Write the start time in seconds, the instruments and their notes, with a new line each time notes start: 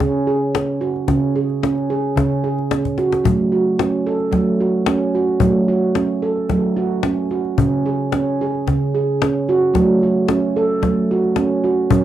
0.00 handpan C#3 C#4, cajon bass, cajon slap
0.27 handpan G#4
0.55 handpan C#4, cajon slap
0.81 handpan F#4, cajon slap
0.96 cajon slap
1.08 handpan C#3 C#4, cajon bass, cajon slap
1.36 handpan G#4, cajon slap
1.50 cajon slap
1.63 handpan C#4, cajon slap
1.78 cajon slap
1.90 handpan G#4, cajon slap
2.16 handpan C#3 C#4, cajon bass, cajon slap
2.32 cajon slap
2.44 handpan G#4, cajon slap
2.58 cajon slap
2.71 handpan C#4, cajon slap
2.85 cajon bass
2.98 handpan F#4, cajon slap
3.12 cajon slap
3.24 handpan F#3 A3, cajon bass
3.52 handpan F#4
3.79 handpan C#4, cajon slap
4.07 handpan A4
4.20 cajon slap
4.31 handpan F#3 A3, cajon bass, cajon slap
4.61 handpan F#4
4.86 handpan C#4, cajon slap
5.14 handpan F#4, cajon slap
5.29 cajon slap
5.40 handpan F#3 A3, cajon bass
5.68 handpan F#4
5.95 handpan C#4, cajon slap
6.22 handpan A4
6.37 cajon slap
6.50 handpan F#3 A3, cajon bass, cajon slap
6.76 handpan F#4
7.03 handpan C#4, cajon slap
7.30 handpan F#4, cajon slap
7.45 cajon slap
7.58 handpan C#3 C#4, cajon bass
7.86 handpan G#4
8.12 handpan C#4, cajon slap
8.41 handpan G#4
8.55 cajon slap
8.67 handpan C#3 C#4, cajon bass, cajon slap
8.95 handpan G#4
9.22 handpan C#4, cajon slap
9.48 handpan F#4, cajon slap
9.61 cajon slap
9.74 handpan F#3 A3, cajon bass, cajon slap
10.02 handpan F#4, cajon slap
10.28 handpan C#4, cajon slap
10.56 handpan A4
10.82 handpan F#3 A3, cajon bass, cajon slap
10.97 cajon slap
11.11 handpan F#4
11.24 cajon slap
11.36 handpan C#4, cajon slap
11.64 handpan F#4, cajon slap
11.90 handpan F#3 C#4, cajon bass